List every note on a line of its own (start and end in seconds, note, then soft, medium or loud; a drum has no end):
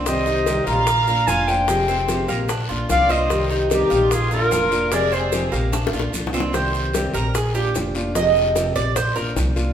0.00 0.61 C2 medium
0.00 0.25 C4 medium
0.06 0.46 C3 medium
0.06 0.46 D#3 medium
0.06 0.46 G3 medium
0.06 0.47 C4 medium
0.06 0.47 G4 medium
0.06 0.63 C5 medium
0.06 0.64 D#5 medium
0.06 high bongo medium
0.06 long guiro medium
0.06 maracas medium
0.26 0.65 D#4 medium
0.26 high bongo soft
0.26 maracas soft
0.46 0.66 C3 medium
0.46 0.66 D#3 medium
0.46 0.67 G3 medium
0.46 0.66 C4 medium
0.46 0.65 G4 medium
0.46 high bongo medium
0.46 short guiro medium
0.46 maracas medium
0.66 1.23 A#1 medium
0.66 0.87 G3 soft
0.66 0.87 C4 soft
0.66 1.06 F4 medium
0.66 0.86 G4 soft
0.66 1.23 F5 medium
0.66 1.29 A#5 loud
0.66 high bongo soft
0.66 short guiro medium
0.66 maracas soft
0.87 muted nylon-string guitar stroke medium
0.87 high bongo medium
0.87 long guiro medium
0.87 maracas medium
1.07 1.27 A#3 soft
1.07 1.27 D4 soft
1.07 1.27 F4 soft
1.07 1.27 A#4 medium
1.07 maracas soft
1.27 2.23 F1 medium
1.27 1.47 F3 medium
1.27 1.47 A#3 medium
1.27 1.47 D4 medium
1.27 1.67 F4 medium
1.27 1.47 F4 medium
1.27 1.47 F5 medium
1.27 1.49 G#5 loud
1.27 high bongo soft
1.27 low bongo medium
1.27 short guiro medium
1.27 maracas medium
1.47 1.68 A#3 soft
1.47 1.68 D4 medium
1.47 1.67 F4 medium
1.47 2.28 C5 medium
1.47 2.29 G5 medium
1.47 high bongo soft
1.47 short guiro medium
1.47 maracas soft
1.68 2.07 C3 medium
1.68 2.07 F3 medium
1.68 1.88 G#3 medium
1.68 2.08 G#3 medium
1.68 2.08 C4 medium
1.68 2.08 G4 medium
1.68 high bongo medium
1.68 long guiro medium
1.68 maracas medium
1.88 2.28 C4 medium
1.88 high bongo soft
1.88 maracas soft
2.08 2.28 C3 medium
2.08 2.28 F3 medium
2.08 2.28 G#3 medium
2.08 2.28 C4 medium
2.08 2.27 G4 medium
2.08 high bongo medium
2.08 short guiro medium
2.08 maracas medium
2.28 2.67 A#1 medium
2.28 2.49 G#3 soft
2.28 2.48 A#3 medium
2.28 2.48 C4 soft
2.28 2.48 G4 medium
2.28 high bongo soft
2.28 short guiro medium
2.28 maracas soft
2.49 2.69 D4 medium
2.49 muted nylon-string guitar stroke medium
2.49 high bongo medium
2.49 long guiro medium
2.49 maracas medium
2.69 2.89 A#1 medium
2.69 2.88 A#3 soft
2.69 2.88 D4 medium
2.69 2.89 F4 medium
2.69 3.08 F4 medium
2.69 maracas soft
2.88 3.85 C2 medium
2.88 3.08 F3 medium
2.88 3.09 A#3 medium
2.88 3.08 D4 medium
2.88 3.08 F4 medium
2.88 3.09 D5 medium
2.88 3.12 F5 loud
2.88 high bongo soft
2.88 low bongo medium
2.88 short guiro medium
2.88 maracas medium
3.09 3.30 A#3 medium
3.09 3.49 C4 medium
3.09 3.29 D4 medium
3.09 3.29 F4 medium
3.09 3.51 C5 medium
3.09 3.51 D#5 loud
3.09 high bongo soft
3.09 short guiro medium
3.09 maracas soft
3.30 3.69 C3 medium
3.30 3.69 D#3 medium
3.30 3.70 G3 medium
3.30 3.70 C4 medium
3.30 3.70 G4 medium
3.30 high bongo medium
3.30 long guiro medium
3.30 maracas medium
3.50 3.90 D#4 medium
3.50 high bongo soft
3.50 maracas soft
3.70 3.90 C3 medium
3.70 3.90 D#3 medium
3.70 3.90 G3 medium
3.70 3.90 C4 medium
3.70 4.09 D#4 medium
3.70 3.90 G4 medium
3.70 4.14 G4 medium
3.70 high bongo medium
3.70 short guiro medium
3.70 maracas medium
3.90 4.48 A#1 medium
3.90 4.11 G3 soft
3.90 4.11 C4 soft
3.90 4.30 F4 medium
3.90 4.10 G4 medium
3.90 high bongo soft
3.90 short guiro medium
3.90 maracas soft
4.11 4.31 F4 medium
4.11 4.32 G#4 medium
4.11 muted nylon-string guitar stroke medium
4.11 high bongo medium
4.11 long guiro medium
4.11 maracas medium
4.31 4.51 A#3 soft
4.31 4.51 D4 soft
4.31 4.51 F4 soft
4.31 4.88 F4 medium
4.31 4.51 A#4 medium
4.31 4.95 A#4 loud
4.31 maracas soft
4.51 5.47 F1 medium
4.51 4.71 F3 medium
4.51 4.71 A#3 soft
4.51 4.71 D4 medium
4.51 4.90 F4 medium
4.51 4.70 F4 medium
4.51 high bongo soft
4.51 low bongo medium
4.51 short guiro medium
4.51 maracas medium
4.71 4.92 A#3 medium
4.71 4.91 D4 medium
4.71 4.91 F4 medium
4.71 high bongo soft
4.71 short guiro medium
4.71 maracas soft
4.92 5.31 C3 medium
4.92 5.31 F3 medium
4.92 5.11 G#3 medium
4.92 5.32 G#3 medium
4.92 5.32 C4 medium
4.92 5.32 G4 medium
4.92 5.12 G#4 medium
4.92 5.15 D5 loud
4.92 high bongo medium
4.92 long guiro medium
4.92 maracas medium
5.12 5.51 C4 medium
5.12 5.53 G#4 medium
5.12 5.53 C5 medium
5.12 high bongo soft
5.12 maracas soft
5.32 5.52 C3 medium
5.32 5.52 F3 medium
5.32 5.52 G#3 medium
5.32 5.52 C4 medium
5.32 5.51 G4 medium
5.32 high bongo medium
5.32 short guiro medium
5.32 maracas medium
5.52 5.90 A#1 medium
5.52 5.72 G#3 soft
5.52 5.72 A#3 medium
5.52 5.72 C4 soft
5.52 5.72 G4 soft
5.52 high bongo soft
5.52 short guiro medium
5.52 maracas soft
5.72 5.92 D4 medium
5.72 muted nylon-string guitar stroke medium
5.72 high bongo loud
5.72 long guiro medium
5.72 maracas medium
5.87 high bongo loud
5.92 6.11 A#1 medium
5.92 6.12 A#3 soft
5.92 6.13 D4 soft
5.92 6.12 F4 soft
5.92 6.32 F4 medium
5.92 maracas soft
6.00 high bongo medium
6.12 6.32 F3 medium
6.12 6.33 A#3 medium
6.12 6.32 D4 medium
6.12 6.31 F4 medium
6.12 short guiro medium
6.12 maracas medium
6.27 low bongo loud
6.32 6.53 A#3 medium
6.32 6.53 C4 medium
6.32 6.53 D4 medium
6.32 6.52 F4 medium
6.32 short guiro medium
6.32 maracas soft
6.40 low bongo loud
6.52 6.92 C3 medium
6.52 6.93 D#3 medium
6.52 6.93 G3 medium
6.52 6.93 C4 medium
6.52 6.93 G4 medium
6.52 7.10 C5 medium
6.52 high bongo medium
6.52 long guiro medium
6.52 maracas medium
6.74 high bongo soft
6.74 maracas soft
6.93 7.13 C3 medium
6.93 7.13 D#3 medium
6.93 7.14 G3 medium
6.93 7.14 C4 medium
6.93 7.13 G4 medium
6.93 high bongo medium
6.93 short guiro medium
6.93 maracas medium
7.14 7.71 A#1 medium
7.14 7.34 G3 soft
7.14 7.34 C4 soft
7.14 7.33 G4 soft
7.14 7.34 A#4 medium
7.14 high bongo soft
7.14 short guiro medium
7.14 maracas soft
7.34 7.54 G#4 medium
7.34 muted nylon-string guitar stroke medium
7.34 high bongo medium
7.34 long guiro medium
7.34 maracas medium
7.54 7.74 A#3 soft
7.54 7.74 D4 soft
7.54 7.74 F4 medium
7.54 7.74 G4 medium
7.54 maracas soft
7.74 8.70 F1 medium
7.74 7.94 F3 soft
7.74 7.94 A#3 medium
7.74 7.94 D4 medium
7.74 7.94 F4 medium
7.74 high bongo soft
7.74 low bongo medium
7.74 short guiro medium
7.74 maracas medium
7.95 8.15 A#3 medium
7.95 8.15 D4 medium
7.95 8.14 F4 medium
7.95 high bongo soft
7.95 short guiro medium
7.95 maracas soft
8.15 8.54 C3 medium
8.15 8.54 F3 medium
8.15 8.55 G#3 medium
8.15 8.55 C4 medium
8.15 8.55 G4 medium
8.15 8.72 D#5 medium
8.15 high bongo medium
8.15 long guiro medium
8.15 maracas medium
8.36 high bongo soft
8.36 maracas soft
8.55 8.75 C3 medium
8.55 8.75 F3 medium
8.55 8.75 G#3 medium
8.55 8.75 C4 medium
8.55 8.74 G4 medium
8.55 high bongo medium
8.55 short guiro medium
8.55 maracas medium
8.75 9.13 A#1 medium
8.75 8.95 G#3 soft
8.75 8.95 C4 soft
8.75 8.95 G4 soft
8.75 8.95 D5 medium
8.75 high bongo soft
8.75 short guiro medium
8.75 maracas soft
8.96 9.15 C5 medium
8.96 muted nylon-string guitar stroke medium
8.96 high bongo medium
8.96 long guiro medium
8.96 maracas medium
9.15 9.35 A#1 medium
9.15 9.35 A#3 soft
9.15 9.35 D4 soft
9.15 9.35 F4 medium
9.15 9.35 A#4 medium
9.15 maracas soft
9.36 9.73 C2 medium
9.36 9.55 F3 soft
9.36 9.55 A#3 medium
9.36 9.55 D4 medium
9.36 9.55 F4 medium
9.36 high bongo soft
9.36 low bongo medium
9.36 short guiro medium
9.36 maracas medium
9.56 9.73 A#3 medium
9.56 9.73 D4 medium
9.56 9.73 F4 medium
9.56 high bongo soft
9.56 short guiro medium
9.56 maracas soft